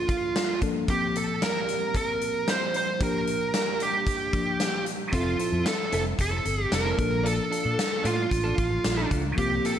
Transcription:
Already playing: F3 A#3 D4 F4 A4
0.09 kick, closed hi-hat
0.36 snare, closed hi-hat
0.62 F3 A#3 D4 A4, kick, closed hi-hat
0.88 F3 A#3 C4 G4, kick, closed hi-hat
1.15 A4, closed hi-hat
1.42 A#4, snare, closed hi-hat
1.68 closed hi-hat
1.95 A#4, kick, closed hi-hat
2.21 closed hi-hat
2.48 C5, snare, closed hi-hat
2.74 C5, closed hi-hat
2.99 F3 A#3 D4 G4, kick, closed hi-hat
3.04 A#4
3.27 closed hi-hat
3.54 snare, closed hi-hat
3.80 G4, closed hi-hat
4.07 kick, closed hi-hat
4.33 F3 A#3 D4 G4, kick, closed hi-hat
4.60 snare, closed hi-hat
4.86 closed hi-hat
5.12 F1 F3 C4 E4 F4 A4 E5, kick, closed hi-hat
5.26 muted clean electric guitar stroke
5.39 C4 E4 A4, closed hi-hat
5.52 F2 C4 E4 A4
5.66 A4, snare, closed hi-hat
5.79 muted clean electric guitar stroke
5.92 F1 C4 E4 A4, closed hi-hat
6.05 muted clean electric guitar stroke
6.19 F1 A4, muted clean electric guitar stroke, kick, closed hi-hat
6.31 C4 E4 A4
6.45 G1, muted clean electric guitar stroke, closed hi-hat
6.58 muted clean electric guitar stroke
6.71 F1 A#4, muted clean electric guitar stroke, snare, closed hi-hat
6.85 C4 E4 A4
6.97 A#1 F3 A#3 D4 A4, muted clean electric guitar stroke, kick, closed hi-hat
7.11 muted clean electric guitar stroke
7.24 D4 F4 A4, closed hi-hat
7.37 muted clean electric guitar stroke
7.50 D4 F4 A4, closed hi-hat
7.64 A#2 D4 F4 A4
7.79 snare, closed hi-hat
7.91 muted clean electric guitar stroke
8.04 A2 D4 F4 A4, closed hi-hat
8.17 muted clean electric guitar stroke
8.31 A1, muted clean electric guitar stroke, kick, closed hi-hat
8.44 D4 F4 A4
8.58 A1, kick, closed hi-hat
8.71 muted clean electric guitar stroke
8.84 A#1, muted clean electric guitar stroke, snare, closed hi-hat
8.98 D4 F4 A4
9.11 C#2 D4 F4 A4, kick, closed hi-hat
9.24 muted clean electric guitar stroke
9.36 C2 F3 A#3 C4 F4 G4, kick, closed hi-hat
9.51 muted clean electric guitar stroke
9.65 A#3 F4 G4 A4, closed hi-hat

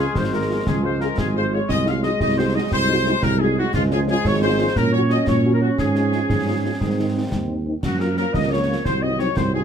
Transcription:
Already playing: F3 G#3
0.00 G#4
0.15 G#1 C5, concert bass drum, snare
0.32 G#3 F4 G#4 A#4
0.50 G#3 F4 G#4
0.67 C#2 G#4, concert bass drum, snare
0.83 G#3 F4 G#4 C5
1.00 G#3 F4 G#4 A#4, snare
1.17 G#1 G#4, concert bass drum, snare
1.35 G#3 F4 G#4 C5
1.52 G#3 F4 G#4 C#5
1.69 C2 F#3 G#3 D#5, concert bass drum, snare
1.85 G#3 D#4 F#4 F5, snare
2.02 G#3 D#4 F#4 D#5, snare
2.20 C2 D#5, concert bass drum, snare
2.36 G#3 D#4 F#4 C5
2.54 G#3 D#4 F#4 D#5
2.72 C2 C5, concert bass drum, snare
2.88 G#3 D#4 F#4
3.05 G#3 D#4 F#4, snare
3.23 C2 A#4, concert bass drum, snare
3.39 G#3 D#4 F#4 G#4
3.57 G#3 D#4 F#4
3.74 C#2 F3 G#3 F4, concert bass drum, snare, crash
3.91 G#3 C#4 F4 G#4, snare
4.08 G#3 C#4 F4 G#4, snare
4.25 G#1 C#5, concert bass drum, snare
4.42 G#3 C#4 F4 C5
4.59 G#3 C#4 F4
4.76 A#2 F#3 C#4 A#4, concert bass drum, snare
4.92 F#3 C#4 F#4 C#5
5.09 F#3 C#4 F#4 D#5, snare
5.26 A#2 C#5, concert bass drum, snare
5.44 F#3 C#4 F#4
5.53 A#4
5.61 F#3 C#4 F#4
5.77 G#2 F3 G#4, concert bass drum, snare
5.95 G#3 C#4 F4, snare
6.12 G#3 C#4 F4, snare
6.30 G#2, concert bass drum, snare
6.46 G#3 C#4 F4
6.63 G#3 C#4 F4
6.81 G#2 D#3 C4, concert bass drum, snare
6.97 D#3 C4 D#4
7.15 D#3 C4 D#4
7.32 D#2, concert bass drum, snare
7.48 D#3 C4 D#4
7.65 D#3 C4 D#4
7.82 F#2 F3 A#3 F#4, concert bass drum, snare, crash
7.99 F#3 A#3 F4 A#4, snare
8.17 F#3 A#3 F4 A#4, snare
8.34 C#2 D#5, concert bass drum, snare
8.51 F#3 A#3 F4 C#5
8.68 F#3 A#3 F4
8.84 C2 D#3 F#3 C5, concert bass drum, snare
9.01 F#3 C4 D#4 D#5
9.19 F#3 C4 D#4 C#5, snare
9.36 C2 C5, concert bass drum, snare
9.54 F#3 C4 D#4 G#4

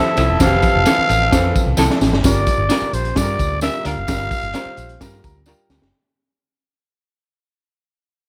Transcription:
Already playing: E3 F3 C4 E4 A4 E5
0.01 A4
0.17 C2 C4 E4 A4, ride, tambourine
0.30 E1
0.39 F1 E3 F3 C4 F#4 F5, kick, snare, ride, tambourine
0.46 G4
0.62 kick, ride, tambourine
0.75 F1
0.85 E3 F3 C4 E4 A4, snare, ride, tambourine
0.98 muted fingered electric bass stroke
1.09 A1, ride, tambourine
1.31 F2 E3 F3 C4 A4, kick, snare, ride, tambourine
1.56 muted fingered electric bass stroke, kick, ride, tambourine
1.66 C2
1.77 C2 F3 C4 E4 A4, snare, tambourine
1.90 snare
2.01 A1, snare, tambourine
2.12 G1, snare
2.23 G1 G3 F4 A#4 D5, kick, snare, closed hi-hat, tambourine
2.47 kick, closed hi-hat, tambourine
2.58 G1
2.69 G3 D4 F4 A#4, snare, closed hi-hat, tambourine
2.82 muted fingered electric bass stroke
2.93 A#1 C5, closed hi-hat, tambourine
3.05 closed hi-hat
3.15 G2 G3 F4 A4 D5, kick, snare, closed hi-hat, tambourine
3.23 A#4
3.39 D2, kick, closed hi-hat, tambourine
3.61 G3 D4 F4 A#4 E5, snare, closed hi-hat, tambourine
3.85 D2 D4 F4 A#4 F5, closed hi-hat, tambourine
3.97 F#1
4.08 G1 G3 F4 A#4, kick, snare, closed hi-hat, tambourine
4.31 kick, closed hi-hat, tambourine
4.43 G1, closed hi-hat
4.54 G3 D4 F4 A#4 C5, snare, closed hi-hat, tambourine
4.66 muted fingered electric bass stroke
4.77 A#1, closed hi-hat, tambourine
4.89 closed hi-hat
5.00 G2 G3 F4 A#4, kick, snare, closed hi-hat, tambourine
5.24 D2 A#5, kick, closed hi-hat, tambourine
5.46 G3 D4 F4 A#4 G5, tambourine
5.70 D2 G5, snare, tambourine
5.82 snare

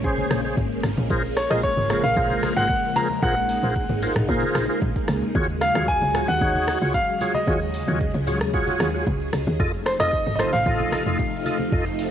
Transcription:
Already playing: A#1 C#3 G#3 A#3 C#4
0.04 C#4 G#4 C5, kick, low conga, shaker
0.18 high conga, shaker
0.30 A#1, cross-stick, open hi-hat, high conga, shaker
0.44 C#4 G#4 C5, shaker
0.57 G#1, kick, low conga, shaker
0.72 shaker
0.83 G#1, cross-stick, open hi-hat, high conga, shaker
0.97 A#1, high conga, shaker
1.10 A#1 F3 F4 G#4 A#4 C5, kick, shaker
1.24 shaker
1.37 C#5, cross-stick, open hi-hat, shaker
1.50 A#1 F4 G#4 A#4 C5 D#5, cross-stick, shaker
1.63 C#5, kick, shaker
1.77 G#1, high conga, shaker
1.90 F4 G#4 A#4 C5, cross-stick, open hi-hat, low conga, shaker
2.03 A#1 F5, high conga, shaker
2.16 A#1 F4 G#4 A#4 C5, kick, low conga, shaker
2.30 high conga, shaker
2.43 cross-stick, open hi-hat, high conga, shaker
2.56 G#1 F4 G#4 A#4 C5 F#5, shaker
2.69 kick, low conga, shaker
2.84 shaker
2.96 F4 G#4 A#4 C5 A#5, open hi-hat, high conga, shaker
3.10 high conga, shaker
3.22 A#1 D#4 F4 G#4 A#4 C5 F#5, kick, low conga, shaker
3.36 shaker
3.49 open hi-hat, shaker
3.62 A#1 F4 G#4 A#4 C5, shaker
3.75 kick, shaker
3.89 G#1, high conga, shaker
4.02 F4 G#4 A#4 C5, open hi-hat, low conga, shaker
4.15 A#1, cross-stick, mid tom, high conga, shaker
4.28 A#2 F4 G#4 A#4 C5, kick, low conga, shaker
4.42 high conga, shaker
4.55 A#1, cross-stick, open hi-hat, high conga, shaker
4.69 F4 G#4 A#4 C5, shaker
4.81 A#1, kick, low conga, shaker
4.96 kick, shaker
5.08 C#2, cross-stick, open hi-hat, high conga, shaker
5.22 high conga, shaker
5.35 D#2 C#3 F#3 F4 F#4 G#4 C#5, kick, shaker
5.49 shaker
5.61 F5, cross-stick, open hi-hat, shaker
5.75 D#2 F4 F#4 G#4 C#5 F5, cross-stick, shaker
5.88 G#5, kick, shaker
6.02 C#2, high conga, shaker
6.14 F4 F#4 G#4 C#5, cross-stick, open hi-hat, low conga, shaker
6.28 D#2 F#5, high conga, shaker
6.41 D#2 D#4 F#4 G#4 C#5, kick, low conga, shaker
6.55 high conga, shaker
6.67 cross-stick, open hi-hat, high conga, shaker
6.81 C#2 F4 F#4 G#4 C#5, shaker
6.94 F5, kick, low conga, shaker
7.09 shaker
7.21 F4 F#4 G#4 C#5, open hi-hat, high conga, shaker
7.34 D#5, high conga, shaker
7.47 D#2 F4 F#4 G#4 C#5, kick, shaker
7.61 shaker
7.74 open hi-hat, shaker
7.87 D#2 F4 F#4 G#4 C#5, shaker
8.00 kick, shaker
8.14 C#2, high conga, shaker
8.27 F4 F#4 G#4 C#5, open hi-hat, low conga, shaker
8.40 D#2, cross-stick, high conga, shaker
8.53 F4 F#4 G#4 C#5, kick, low conga, shaker
8.67 high conga, shaker
8.80 D#2, cross-stick, open hi-hat, high conga, shaker
8.94 F4 F#4 G#4 C#5, shaker
9.06 C#2, kick, low conga, shaker
9.22 shaker
9.33 C#2, cross-stick, open hi-hat, high conga, shaker
9.47 D#2, high conga, shaker
9.60 F1 C3 F3 A3 D#4 F4 A4 D#5, kick, shaker
9.74 shaker
9.86 C5, cross-stick, open hi-hat, shaker
10.00 F1 F4 A4 D#5, cross-stick, shaker
10.12 kick, shaker
10.26 G#1, high conga, shaker
10.36 F4 C5 D#5, cross-stick, low conga
10.40 A4 D#5, open hi-hat, shaker
10.53 A1 F5, high conga, shaker
10.66 A1 F4 A4 D#5, kick, low conga, shaker
10.79 high conga, shaker
10.92 cross-stick, open hi-hat, high conga, shaker
11.06 F1 F4 A4 D#5, shaker
11.19 kick, low conga, shaker
11.34 shaker
11.46 F4 A4 D#5, open hi-hat, high conga, shaker
11.59 high conga, shaker
11.72 F1 F4 A4 D#5, kick, shaker
11.86 high conga, shaker
11.99 open hi-hat, shaker

